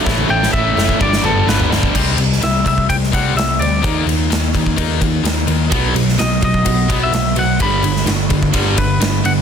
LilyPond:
<<
  \new Staff \with { instrumentName = "Clean electric guitar" } { \time 4/4 \key g \lydian \tempo 4 = 127 r8 g''8 e''4 d''8 a'8 b'8 r8 | \key c \lydian r4 e''8 e''8 g''8 fis''8 e''8 d''8~ | d''8 r2. r8 | r4 dis''8 dis''4~ dis''16 e''8. fis''8 |
b''2~ b''8 b'4 fis''8 | }
  \new Staff \with { instrumentName = "Steel-string acoustic guitar" } { \clef bass \time 4/4 \key g \lydian a,8 a8 cis'8 a8 g,8 b8 d8 f8 | \key c \lydian c8 c8 g8 c8 c'8 c8 g8 c'8 | dis8 dis8 g8 dis8 ais8 dis8 g8 ais8 | b,8 b,8 fis8 b,8 b8 b,8 fis8 b8 |
g,8 d8 g8 d8 b8 d8 g8 b8 | }
  \new Staff \with { instrumentName = "Overdriven electric guitar" } { \clef bass \time 4/4 \key g \lydian <a, e a cis' e'>8 <a, e a cis' e'>8 <a, e a cis' e'>8 <a, e a cis' e'>8 <g, d f b d'>8 <g, d f b d'>8 <g, d f b d'>8 <g, d f b d'>8 | \key c \lydian r1 | r1 | <b, fis b>8 <b, fis>8 <b, fis>8 <b, fis>8 <b, fis>8 <b, fis b>8 <b, fis>8 <b, fis>8 |
<g, d g>8 <g, d>8 <g, d>8 <g, d>8 <g, d g>8 <g, d>8 <g, d>8 <g, d>8 | }
  \new Staff \with { instrumentName = "Distorted electric guitar" } { \clef bass \time 4/4 \key g \lydian <a, e a>8 <a, e a>8 <a, e a>8 <a, e a>8 <g, d g>8 <g, d g>8 <g, d g>8 <g, d g>8 | \key c \lydian <c g c'>8 <c g>8 <c g>8 <c g>8 <c g>8 <c g c'>8 <c g>8 <c g>8 | <dis ais dis'>8 <dis ais>8 <dis ais>8 <dis ais>8 <dis ais dis'>8 <dis ais>8 <dis ais>8 <dis ais>8 | <b, fis b>8 <b, fis>8 <b, fis>8 <b, fis>8 <b, fis>8 <b, fis b>8 <b, fis>8 <b, fis>8 |
<g, d g>8 <g, d>8 <g, d>8 <g, d>8 <g, d g>8 <g, d>8 <g, d>8 <g, d>8 | }
  \new Staff \with { instrumentName = "Picked electric bass" } { \clef bass \time 4/4 \key g \lydian a,,8 a,,8 a,,8 fis,,8 g,,8 g,,8 g,,8 g,,8 | \key c \lydian c,8 c,8 c,8 c,8 c,8 c,8 c,8 d,8 | dis,8 dis,8 dis,8 dis,8 dis,8 dis,8 dis,8 dis,8 | b,,8 b,,8 b,,8 b,,8 b,,8 b,,8 b,,8 b,,8 |
g,,8 g,,8 g,,8 g,,8 g,,8 g,,8 g,,8 g,,8 | }
  \new DrumStaff \with { instrumentName = "Drums" } \drummode { \time 4/4 <bd sn>16 tommh8 sn16 bd8 sn16 bd16 bd16 sn16 toml8 sn16 tomfh16 sn16 bd16 | <cymc bd>8 cymr16 sn16 <cymr sn>8 <bd cymr>16 bd16 <bd cymr>16 sn16 <bd cymr>8 <cymr sn>8 cymr8 | <bd cymr>8 cymr8 <cymr sn>8 <bd cymr>16 bd16 <bd cymr>8 <bd cymr>8 <cymr sn>8 cymr8 | <bd cymr>8 cymr16 sn16 <cymr sn>8 <bd cymr>16 bd16 <bd cymr>8 <bd cymr>8 <cymr sn>8 cymr8 |
<bd cymr>8 cymr16 sn16 <cymr sn>8 <bd cymr>16 bd16 <bd cymr>8 <bd cymr>8 <cymr sn>8 cymr8 | }
>>